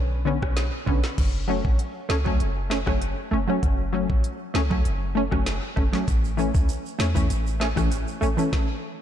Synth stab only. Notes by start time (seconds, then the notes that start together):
0.25 D3 B3 C#4
0.86 D3 B3 C#4
1.48 F#3 A3 C#4
2.09 A3 C#4
2.25 F#3 A3 C#4
2.70 A3 C#4
2.86 F#3 A3 C#4
3.31 A3 C#4
3.48 F#3 A3 C#4
3.93 F#3 A3 C#4
4.54 A3 C#4
4.70 F#3 A3 C#4
5.15 A3 C#4
5.31 F#3 A3 C#4
5.76 A3 C#4
5.93 F#3 A3 C#4
6.37 E3 A3 C#4
6.99 A3 C#4
7.15 E3 A3 C#4
7.60 A3 C#4
7.76 E3 A3 C#4
8.21 A3 C#4
8.37 E3 A3 C#4